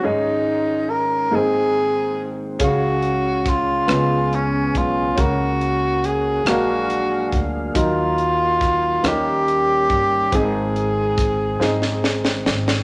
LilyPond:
<<
  \new Staff \with { instrumentName = "Tenor saxophone" } { \time 6/8 \key aes \mixolydian \tempo 4. = 47 ees'4 bes'8 aes'4 r8 | ges'4 f'4 des'8 f'8 | ges'4 aes'8 ges'4 r8 | f'4. g'4. |
aes'2~ aes'8 r8 | }
  \new Staff \with { instrumentName = "Upright piano" } { \time 6/8 \key aes \mixolydian <des' ees' aes'>4 r8 <bes c' ees' aes'>4 r8 | <des' aes' f''>4 r8 <aes ces' des' f' ces''>4 r8 | <des' ges' bes'>4 r8 <aes d' ges' bes' f''>4 r8 | <ges ees' bes'>4 r8 <f g bes des' ees' bes'>4 r8 |
<c' ees' aes'>4 r8 <c' ees' aes'>4 r8 | }
  \new Staff \with { instrumentName = "Upright piano" } { \clef bass \time 6/8 \key aes \mixolydian aes,4. aes,4. | des4. des4. | des4. bes,4. | ees4. ees4. |
aes,4. r4. | }
  \new Staff \with { instrumentName = "Tonewheel organ" } { \time 6/8 \key aes \mixolydian << { r4. <ees c'>4. | <des des'>4. <ces' aes'>4. | <bes ges'>4. <d' aes'>4. | <ges ees'>4. <g g'>4. |
c'2. | } \\ { <aes des'>2.~ | <aes des'>4. des'4.~ | des'4. f''4. | r4. des'4. |
aes2. | } >> }
  \new Staff \with { instrumentName = "Tonewheel organ" } { \clef bass \time 6/8 \key aes \mixolydian ees4. r4. | r2. | r4. ges4. | r4. ees4.~ |
ees2. | }
  \new Staff \with { instrumentName = "Upright bass" } { \clef bass \time 6/8 \key aes \mixolydian r2. | des,4. des,4 ces,8 | des,4. bes,,4 d,8 | ees,4. ees,4 g,,8 |
aes,,4. aes,,4 aes,,8 | }
  \new DrumStaff \with { instrumentName = "Drums" } \drummode { \time 6/8 r4. r4. | <hh bd>8 hh8 <hh bd ss>8 <hh ss>8 hh8 <hh bd>8 | <hh bd>8 hh8 hh8 <hh ss>8 hh8 <hh bd>8 | <hh bd>8 hh8 <hh bd ss>8 <hh ss>8 hh8 <hh bd>8 |
<hh bd>8 hh8 <hh bd ss>8 sn16 sn16 sn16 sn16 sn16 sn16 | }
>>